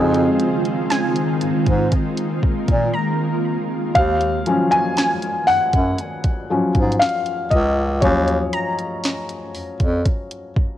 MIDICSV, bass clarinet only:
0, 0, Header, 1, 2, 480
1, 0, Start_track
1, 0, Tempo, 1016949
1, 1866, Time_signature, 4, 2, 24, 8
1, 5088, End_track
2, 0, Start_track
2, 0, Title_t, "Bass clarinet"
2, 0, Program_c, 0, 71
2, 0, Note_on_c, 0, 41, 104
2, 168, Note_off_c, 0, 41, 0
2, 668, Note_on_c, 0, 44, 51
2, 716, Note_off_c, 0, 44, 0
2, 788, Note_on_c, 0, 44, 92
2, 897, Note_off_c, 0, 44, 0
2, 1148, Note_on_c, 0, 46, 49
2, 1195, Note_off_c, 0, 46, 0
2, 1267, Note_on_c, 0, 46, 93
2, 1376, Note_off_c, 0, 46, 0
2, 1867, Note_on_c, 0, 39, 102
2, 2088, Note_off_c, 0, 39, 0
2, 2590, Note_on_c, 0, 42, 51
2, 2637, Note_off_c, 0, 42, 0
2, 2707, Note_on_c, 0, 42, 90
2, 2816, Note_off_c, 0, 42, 0
2, 3069, Note_on_c, 0, 44, 50
2, 3117, Note_off_c, 0, 44, 0
2, 3188, Note_on_c, 0, 44, 91
2, 3296, Note_off_c, 0, 44, 0
2, 3548, Note_on_c, 0, 37, 108
2, 3768, Note_off_c, 0, 37, 0
2, 3788, Note_on_c, 0, 39, 121
2, 4008, Note_off_c, 0, 39, 0
2, 4508, Note_on_c, 0, 41, 52
2, 4556, Note_off_c, 0, 41, 0
2, 4627, Note_on_c, 0, 41, 98
2, 4736, Note_off_c, 0, 41, 0
2, 4988, Note_on_c, 0, 42, 50
2, 5035, Note_off_c, 0, 42, 0
2, 5088, End_track
0, 0, End_of_file